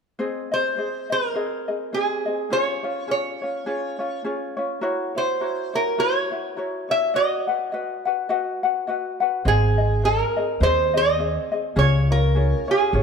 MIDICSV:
0, 0, Header, 1, 4, 480
1, 0, Start_track
1, 0, Key_signature, -4, "major"
1, 0, Tempo, 579151
1, 157, Time_signature, 4, 2, 24, 8
1, 10798, End_track
2, 0, Start_track
2, 0, Title_t, "Resonator guitar played with a steel bar"
2, 0, Program_c, 0, 25
2, 444, Note_on_c, 0, 72, 71
2, 927, Note_off_c, 0, 72, 0
2, 931, Note_on_c, 0, 70, 74
2, 1611, Note_on_c, 0, 68, 65
2, 1628, Note_off_c, 0, 70, 0
2, 2095, Note_on_c, 0, 73, 88
2, 2100, Note_off_c, 0, 68, 0
2, 2570, Note_off_c, 0, 73, 0
2, 2580, Note_on_c, 0, 73, 71
2, 3499, Note_off_c, 0, 73, 0
2, 4290, Note_on_c, 0, 72, 71
2, 4769, Note_on_c, 0, 70, 75
2, 4779, Note_off_c, 0, 72, 0
2, 4971, Note_on_c, 0, 73, 82
2, 4974, Note_off_c, 0, 70, 0
2, 5690, Note_off_c, 0, 73, 0
2, 5728, Note_on_c, 0, 76, 85
2, 5930, Note_off_c, 0, 76, 0
2, 5934, Note_on_c, 0, 75, 83
2, 7335, Note_off_c, 0, 75, 0
2, 7856, Note_on_c, 0, 68, 84
2, 8330, Note_on_c, 0, 70, 78
2, 8342, Note_off_c, 0, 68, 0
2, 8809, Note_off_c, 0, 70, 0
2, 8812, Note_on_c, 0, 72, 92
2, 9090, Note_off_c, 0, 72, 0
2, 9094, Note_on_c, 0, 75, 84
2, 9735, Note_off_c, 0, 75, 0
2, 9769, Note_on_c, 0, 73, 90
2, 10043, Note_on_c, 0, 70, 79
2, 10047, Note_off_c, 0, 73, 0
2, 10530, Note_off_c, 0, 70, 0
2, 10533, Note_on_c, 0, 68, 74
2, 10798, Note_off_c, 0, 68, 0
2, 10798, End_track
3, 0, Start_track
3, 0, Title_t, "Ukulele"
3, 0, Program_c, 1, 24
3, 156, Note_on_c, 1, 72, 61
3, 159, Note_on_c, 1, 60, 70
3, 163, Note_on_c, 1, 68, 69
3, 167, Note_on_c, 1, 75, 67
3, 417, Note_off_c, 1, 75, 0
3, 427, Note_on_c, 1, 75, 44
3, 428, Note_off_c, 1, 68, 0
3, 433, Note_off_c, 1, 72, 0
3, 435, Note_off_c, 1, 60, 0
3, 438, Note_on_c, 1, 68, 36
3, 446, Note_on_c, 1, 60, 37
3, 632, Note_off_c, 1, 60, 0
3, 634, Note_on_c, 1, 72, 47
3, 635, Note_off_c, 1, 75, 0
3, 640, Note_off_c, 1, 68, 0
3, 641, Note_on_c, 1, 60, 46
3, 649, Note_on_c, 1, 75, 51
3, 650, Note_on_c, 1, 68, 45
3, 900, Note_off_c, 1, 75, 0
3, 910, Note_on_c, 1, 75, 45
3, 913, Note_off_c, 1, 72, 0
3, 914, Note_off_c, 1, 68, 0
3, 916, Note_off_c, 1, 60, 0
3, 924, Note_on_c, 1, 68, 36
3, 928, Note_on_c, 1, 60, 34
3, 1112, Note_off_c, 1, 60, 0
3, 1113, Note_off_c, 1, 68, 0
3, 1113, Note_on_c, 1, 72, 61
3, 1117, Note_off_c, 1, 75, 0
3, 1122, Note_on_c, 1, 60, 59
3, 1123, Note_on_c, 1, 68, 62
3, 1128, Note_on_c, 1, 75, 62
3, 1382, Note_off_c, 1, 75, 0
3, 1385, Note_off_c, 1, 68, 0
3, 1392, Note_off_c, 1, 72, 0
3, 1392, Note_on_c, 1, 75, 45
3, 1395, Note_on_c, 1, 68, 40
3, 1397, Note_off_c, 1, 60, 0
3, 1407, Note_on_c, 1, 60, 34
3, 1591, Note_off_c, 1, 60, 0
3, 1597, Note_off_c, 1, 68, 0
3, 1597, Note_on_c, 1, 72, 46
3, 1598, Note_off_c, 1, 75, 0
3, 1601, Note_on_c, 1, 60, 49
3, 1607, Note_on_c, 1, 68, 57
3, 1609, Note_on_c, 1, 75, 48
3, 1860, Note_off_c, 1, 75, 0
3, 1867, Note_off_c, 1, 68, 0
3, 1870, Note_on_c, 1, 75, 46
3, 1875, Note_off_c, 1, 72, 0
3, 1877, Note_off_c, 1, 60, 0
3, 1877, Note_on_c, 1, 68, 39
3, 1887, Note_on_c, 1, 60, 37
3, 2064, Note_off_c, 1, 68, 0
3, 2074, Note_on_c, 1, 68, 58
3, 2077, Note_off_c, 1, 75, 0
3, 2078, Note_off_c, 1, 60, 0
3, 2082, Note_on_c, 1, 61, 65
3, 2086, Note_on_c, 1, 65, 66
3, 2088, Note_on_c, 1, 73, 65
3, 2338, Note_off_c, 1, 73, 0
3, 2345, Note_off_c, 1, 65, 0
3, 2348, Note_on_c, 1, 73, 44
3, 2350, Note_off_c, 1, 61, 0
3, 2354, Note_off_c, 1, 68, 0
3, 2355, Note_on_c, 1, 65, 41
3, 2360, Note_on_c, 1, 61, 39
3, 2547, Note_off_c, 1, 61, 0
3, 2551, Note_on_c, 1, 68, 52
3, 2553, Note_off_c, 1, 65, 0
3, 2557, Note_off_c, 1, 73, 0
3, 2557, Note_on_c, 1, 61, 49
3, 2563, Note_on_c, 1, 65, 51
3, 2570, Note_on_c, 1, 73, 54
3, 2823, Note_off_c, 1, 73, 0
3, 2833, Note_off_c, 1, 65, 0
3, 2833, Note_off_c, 1, 68, 0
3, 2833, Note_on_c, 1, 73, 45
3, 2835, Note_off_c, 1, 61, 0
3, 2843, Note_on_c, 1, 65, 42
3, 2849, Note_on_c, 1, 61, 37
3, 3028, Note_off_c, 1, 61, 0
3, 3032, Note_off_c, 1, 65, 0
3, 3034, Note_on_c, 1, 68, 65
3, 3037, Note_on_c, 1, 61, 66
3, 3039, Note_off_c, 1, 73, 0
3, 3042, Note_on_c, 1, 65, 74
3, 3048, Note_on_c, 1, 73, 68
3, 3296, Note_off_c, 1, 73, 0
3, 3303, Note_off_c, 1, 65, 0
3, 3306, Note_on_c, 1, 73, 53
3, 3308, Note_off_c, 1, 61, 0
3, 3313, Note_on_c, 1, 65, 44
3, 3314, Note_off_c, 1, 68, 0
3, 3318, Note_on_c, 1, 61, 44
3, 3510, Note_off_c, 1, 61, 0
3, 3516, Note_off_c, 1, 73, 0
3, 3517, Note_off_c, 1, 65, 0
3, 3517, Note_on_c, 1, 68, 51
3, 3520, Note_on_c, 1, 61, 63
3, 3527, Note_on_c, 1, 65, 59
3, 3532, Note_on_c, 1, 73, 65
3, 3775, Note_off_c, 1, 73, 0
3, 3785, Note_on_c, 1, 73, 51
3, 3787, Note_off_c, 1, 65, 0
3, 3790, Note_off_c, 1, 61, 0
3, 3796, Note_off_c, 1, 68, 0
3, 3797, Note_on_c, 1, 65, 43
3, 3800, Note_on_c, 1, 61, 44
3, 3989, Note_off_c, 1, 65, 0
3, 3989, Note_on_c, 1, 70, 70
3, 3992, Note_off_c, 1, 73, 0
3, 3992, Note_on_c, 1, 66, 71
3, 3995, Note_off_c, 1, 61, 0
3, 3999, Note_on_c, 1, 64, 78
3, 4002, Note_on_c, 1, 73, 81
3, 4257, Note_off_c, 1, 73, 0
3, 4264, Note_off_c, 1, 70, 0
3, 4267, Note_off_c, 1, 64, 0
3, 4267, Note_on_c, 1, 73, 43
3, 4273, Note_off_c, 1, 66, 0
3, 4277, Note_on_c, 1, 64, 40
3, 4284, Note_on_c, 1, 66, 37
3, 4474, Note_off_c, 1, 66, 0
3, 4477, Note_off_c, 1, 73, 0
3, 4481, Note_on_c, 1, 70, 47
3, 4482, Note_off_c, 1, 64, 0
3, 4484, Note_on_c, 1, 66, 52
3, 4490, Note_on_c, 1, 64, 58
3, 4494, Note_on_c, 1, 73, 57
3, 4744, Note_off_c, 1, 73, 0
3, 4751, Note_off_c, 1, 70, 0
3, 4754, Note_on_c, 1, 73, 52
3, 4756, Note_off_c, 1, 64, 0
3, 4759, Note_off_c, 1, 66, 0
3, 4766, Note_on_c, 1, 64, 42
3, 4770, Note_on_c, 1, 66, 35
3, 4950, Note_off_c, 1, 66, 0
3, 4952, Note_off_c, 1, 73, 0
3, 4954, Note_off_c, 1, 64, 0
3, 4955, Note_on_c, 1, 70, 57
3, 4960, Note_on_c, 1, 66, 71
3, 4964, Note_on_c, 1, 64, 65
3, 4966, Note_on_c, 1, 73, 70
3, 5216, Note_off_c, 1, 73, 0
3, 5223, Note_off_c, 1, 70, 0
3, 5226, Note_off_c, 1, 64, 0
3, 5226, Note_on_c, 1, 73, 45
3, 5233, Note_off_c, 1, 66, 0
3, 5236, Note_on_c, 1, 64, 42
3, 5243, Note_on_c, 1, 66, 38
3, 5437, Note_off_c, 1, 66, 0
3, 5437, Note_off_c, 1, 73, 0
3, 5442, Note_off_c, 1, 64, 0
3, 5442, Note_on_c, 1, 70, 48
3, 5447, Note_on_c, 1, 66, 50
3, 5453, Note_on_c, 1, 64, 56
3, 5459, Note_on_c, 1, 73, 61
3, 5697, Note_off_c, 1, 73, 0
3, 5704, Note_off_c, 1, 70, 0
3, 5707, Note_off_c, 1, 64, 0
3, 5707, Note_on_c, 1, 73, 44
3, 5716, Note_off_c, 1, 66, 0
3, 5717, Note_on_c, 1, 64, 41
3, 5726, Note_on_c, 1, 66, 36
3, 5913, Note_off_c, 1, 73, 0
3, 5914, Note_off_c, 1, 66, 0
3, 5916, Note_on_c, 1, 75, 64
3, 5922, Note_off_c, 1, 64, 0
3, 5924, Note_on_c, 1, 66, 69
3, 5928, Note_on_c, 1, 71, 67
3, 5930, Note_on_c, 1, 78, 67
3, 6183, Note_off_c, 1, 78, 0
3, 6193, Note_on_c, 1, 78, 43
3, 6194, Note_off_c, 1, 71, 0
3, 6196, Note_off_c, 1, 75, 0
3, 6200, Note_off_c, 1, 66, 0
3, 6204, Note_on_c, 1, 71, 39
3, 6212, Note_on_c, 1, 66, 38
3, 6397, Note_off_c, 1, 66, 0
3, 6398, Note_on_c, 1, 75, 52
3, 6400, Note_off_c, 1, 78, 0
3, 6402, Note_off_c, 1, 71, 0
3, 6407, Note_on_c, 1, 66, 52
3, 6412, Note_on_c, 1, 71, 52
3, 6415, Note_on_c, 1, 78, 61
3, 6665, Note_off_c, 1, 78, 0
3, 6674, Note_off_c, 1, 71, 0
3, 6675, Note_on_c, 1, 78, 49
3, 6676, Note_off_c, 1, 75, 0
3, 6681, Note_off_c, 1, 66, 0
3, 6684, Note_on_c, 1, 71, 52
3, 6690, Note_on_c, 1, 66, 42
3, 6864, Note_off_c, 1, 66, 0
3, 6871, Note_off_c, 1, 71, 0
3, 6871, Note_off_c, 1, 78, 0
3, 6871, Note_on_c, 1, 75, 71
3, 6874, Note_on_c, 1, 66, 71
3, 6881, Note_on_c, 1, 71, 71
3, 6881, Note_on_c, 1, 78, 83
3, 7144, Note_off_c, 1, 78, 0
3, 7151, Note_off_c, 1, 71, 0
3, 7153, Note_off_c, 1, 75, 0
3, 7154, Note_off_c, 1, 66, 0
3, 7154, Note_on_c, 1, 78, 48
3, 7161, Note_on_c, 1, 71, 49
3, 7165, Note_on_c, 1, 66, 42
3, 7349, Note_off_c, 1, 66, 0
3, 7353, Note_off_c, 1, 71, 0
3, 7353, Note_on_c, 1, 75, 56
3, 7359, Note_on_c, 1, 66, 58
3, 7360, Note_off_c, 1, 78, 0
3, 7363, Note_on_c, 1, 71, 66
3, 7370, Note_on_c, 1, 78, 63
3, 7617, Note_off_c, 1, 78, 0
3, 7626, Note_off_c, 1, 71, 0
3, 7627, Note_on_c, 1, 78, 52
3, 7633, Note_off_c, 1, 75, 0
3, 7634, Note_off_c, 1, 66, 0
3, 7636, Note_on_c, 1, 71, 53
3, 7644, Note_on_c, 1, 66, 43
3, 7831, Note_on_c, 1, 72, 67
3, 7832, Note_off_c, 1, 66, 0
3, 7835, Note_on_c, 1, 60, 64
3, 7836, Note_off_c, 1, 78, 0
3, 7837, Note_off_c, 1, 71, 0
3, 7841, Note_on_c, 1, 68, 71
3, 7842, Note_on_c, 1, 75, 70
3, 8094, Note_off_c, 1, 75, 0
3, 8101, Note_off_c, 1, 68, 0
3, 8104, Note_on_c, 1, 75, 47
3, 8110, Note_off_c, 1, 60, 0
3, 8111, Note_on_c, 1, 68, 43
3, 8112, Note_off_c, 1, 72, 0
3, 8120, Note_on_c, 1, 60, 38
3, 8311, Note_off_c, 1, 60, 0
3, 8314, Note_off_c, 1, 75, 0
3, 8315, Note_on_c, 1, 72, 55
3, 8318, Note_off_c, 1, 68, 0
3, 8321, Note_on_c, 1, 60, 52
3, 8327, Note_on_c, 1, 68, 57
3, 8333, Note_on_c, 1, 75, 55
3, 8581, Note_off_c, 1, 75, 0
3, 8591, Note_on_c, 1, 75, 49
3, 8593, Note_off_c, 1, 72, 0
3, 8594, Note_off_c, 1, 68, 0
3, 8596, Note_off_c, 1, 60, 0
3, 8604, Note_on_c, 1, 68, 45
3, 8608, Note_on_c, 1, 60, 40
3, 8788, Note_off_c, 1, 60, 0
3, 8792, Note_on_c, 1, 72, 72
3, 8794, Note_off_c, 1, 68, 0
3, 8797, Note_off_c, 1, 75, 0
3, 8798, Note_on_c, 1, 60, 73
3, 8804, Note_on_c, 1, 68, 67
3, 8807, Note_on_c, 1, 75, 73
3, 9054, Note_off_c, 1, 75, 0
3, 9063, Note_off_c, 1, 68, 0
3, 9064, Note_on_c, 1, 75, 51
3, 9072, Note_off_c, 1, 60, 0
3, 9072, Note_off_c, 1, 72, 0
3, 9073, Note_on_c, 1, 68, 45
3, 9082, Note_on_c, 1, 60, 43
3, 9267, Note_off_c, 1, 60, 0
3, 9271, Note_off_c, 1, 68, 0
3, 9271, Note_on_c, 1, 72, 53
3, 9274, Note_off_c, 1, 75, 0
3, 9277, Note_on_c, 1, 60, 59
3, 9281, Note_on_c, 1, 68, 58
3, 9286, Note_on_c, 1, 75, 56
3, 9535, Note_off_c, 1, 75, 0
3, 9545, Note_on_c, 1, 75, 50
3, 9547, Note_off_c, 1, 68, 0
3, 9551, Note_off_c, 1, 72, 0
3, 9552, Note_off_c, 1, 60, 0
3, 9557, Note_on_c, 1, 68, 41
3, 9562, Note_on_c, 1, 60, 37
3, 9735, Note_off_c, 1, 68, 0
3, 9745, Note_off_c, 1, 60, 0
3, 9745, Note_on_c, 1, 68, 69
3, 9749, Note_on_c, 1, 61, 69
3, 9753, Note_off_c, 1, 75, 0
3, 9755, Note_on_c, 1, 65, 74
3, 9759, Note_on_c, 1, 73, 70
3, 10023, Note_off_c, 1, 73, 0
3, 10027, Note_off_c, 1, 68, 0
3, 10029, Note_off_c, 1, 61, 0
3, 10029, Note_off_c, 1, 65, 0
3, 10033, Note_on_c, 1, 73, 50
3, 10039, Note_on_c, 1, 65, 42
3, 10047, Note_on_c, 1, 61, 41
3, 10232, Note_off_c, 1, 61, 0
3, 10235, Note_on_c, 1, 68, 52
3, 10236, Note_off_c, 1, 65, 0
3, 10237, Note_off_c, 1, 73, 0
3, 10242, Note_on_c, 1, 61, 55
3, 10246, Note_on_c, 1, 65, 57
3, 10250, Note_on_c, 1, 73, 59
3, 10498, Note_off_c, 1, 73, 0
3, 10508, Note_on_c, 1, 73, 47
3, 10509, Note_off_c, 1, 65, 0
3, 10512, Note_off_c, 1, 68, 0
3, 10515, Note_off_c, 1, 61, 0
3, 10519, Note_on_c, 1, 65, 42
3, 10525, Note_on_c, 1, 61, 39
3, 10714, Note_off_c, 1, 73, 0
3, 10715, Note_off_c, 1, 61, 0
3, 10716, Note_off_c, 1, 65, 0
3, 10724, Note_on_c, 1, 68, 75
3, 10725, Note_on_c, 1, 61, 68
3, 10726, Note_on_c, 1, 65, 74
3, 10735, Note_on_c, 1, 73, 80
3, 10798, Note_off_c, 1, 61, 0
3, 10798, Note_off_c, 1, 65, 0
3, 10798, Note_off_c, 1, 68, 0
3, 10798, Note_off_c, 1, 73, 0
3, 10798, End_track
4, 0, Start_track
4, 0, Title_t, "Upright bass"
4, 0, Program_c, 2, 32
4, 7834, Note_on_c, 2, 32, 84
4, 8460, Note_off_c, 2, 32, 0
4, 8789, Note_on_c, 2, 39, 73
4, 9415, Note_off_c, 2, 39, 0
4, 9750, Note_on_c, 2, 37, 90
4, 10376, Note_off_c, 2, 37, 0
4, 10716, Note_on_c, 2, 32, 75
4, 10798, Note_off_c, 2, 32, 0
4, 10798, End_track
0, 0, End_of_file